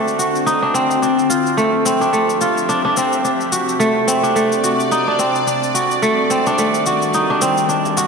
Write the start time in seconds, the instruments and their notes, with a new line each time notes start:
Already playing: synth drone D3 C4 F#4, kora A3 C4 D4 F#4
0.08 cabasa
0.19 kora F#4, cabasa
0.35 cabasa
0.46 kora D#4, cabasa
0.62 kora D4
0.74 kora C4, cabasa
0.91 cabasa
1.02 synth drone F3, kora D4, cabasa
1.16 synth drone G4, cabasa
1.30 kora F4, cabasa
1.47 synth drone A4, cabasa
1.57 kora A3, cabasa
1.70 synth drone E5
1.85 kora C4, cabasa
2.01 kora D4, cabasa
2.13 kora A3, cabasa
2.30 cabasa
2.41 kora F4, cabasa
2.58 cabasa
2.69 kora D4, cabasa
2.85 kora D4
2.97 kora C4, cabasa
3.13 cabasa
3.24 synth drone C3, kora D4, cabasa
3.41 cabasa
3.45 synth drone D5
3.52 kora F#4, cabasa
3.69 cabasa
3.80 kora A3, cabasa
4.07 kora C4, cabasa
4.23 kora D4, cabasa
4.36 kora A3, cabasa
4.52 cabasa
4.64 kora F#4, cabasa
4.80 cabasa
4.91 kora D#4, cabasa
5.07 kora D4
5.19 kora C4, cabasa
5.35 cabasa
5.47 synth drone D#3, kora D4, cabasa
5.63 cabasa
5.69 synth drone G3
5.75 kora F#4, cabasa
5.91 cabasa
6.02 kora A3, cabasa
6.30 kora C4, cabasa
6.47 kora D4, cabasa
6.58 kora A3, cabasa
6.74 cabasa
6.86 kora F#4, cabasa
7.02 cabasa
7.14 kora D#4, cabasa
7.30 kora D4
7.42 kora C4, cabasa
7.58 cabasa
7.69 synth drone D3, kora D4, cabasa
7.85 darbuka ka, cabasa
7.97 kora F#4, darbuka tek, cabasa